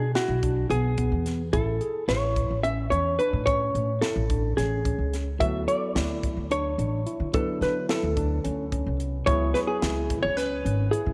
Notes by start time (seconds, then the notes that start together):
Already playing: B2 G#4
0.15 E4 F#4, snare, closed hi-hat
0.28 B1
0.43 D4, kick, closed hi-hat
0.69 B1 B3 G#4, closed hi-hat
0.98 B3, kick, closed hi-hat
1.12 E2
1.26 snare, closed hi-hat
1.53 A1 E4 A4, kick, closed hi-hat
1.81 G#4, closed hi-hat
2.08 A1 E4 C#5, snare, closed hi-hat
2.36 kick, closed hi-hat
2.50 A1
2.63 C#4 E5, closed hi-hat
2.90 E2 C#4 C#5, closed hi-hat
3.19 D4 B4, closed hi-hat
3.33 A2
3.46 C#4 C#5, kick, closed hi-hat
3.75 A2, closed hi-hat
4.01 E4 A4, snare, closed hi-hat
4.16 A1
4.29 D4, kick, closed hi-hat
4.57 A1 C#4 G#4, snare, closed hi-hat
4.85 C#4, kick, closed hi-hat
4.98 C#2
5.13 snare, closed hi-hat
5.39 D2 F#3 B3 E4 F#4 A4 E5, kick, closed hi-hat
5.68 A4 D5, closed hi-hat
5.95 D2 E4, snare, closed hi-hat
6.23 kick, closed hi-hat
6.37 D2
6.51 D4 C#5, closed hi-hat
6.78 A1 D4, closed hi-hat
7.06 E4, closed hi-hat
7.20 D3
7.33 F#3 B3 D4 E4 A4 B4, kick, closed hi-hat
7.61 D3 B4, snare, closed hi-hat
7.89 E4 A4, snare, closed hi-hat
8.03 D2
8.17 D4, kick, closed hi-hat
8.44 D2 C#4, closed hi-hat
8.72 C#4, kick, closed hi-hat
8.86 C2
9.00 closed hi-hat
9.26 C#2 F#3 B3 E4 G#4 C#5, kick, closed hi-hat
9.54 G#4 B4, snare, closed hi-hat
9.67 G#4
9.82 C#2 E4, snare, closed hi-hat
10.10 kick, closed hi-hat
10.23 C#2 C#5
10.37 C#4 B4, snare, closed hi-hat
10.65 G#1 C#4, closed hi-hat
10.91 E4 G#4, closed hi-hat
11.06 C#3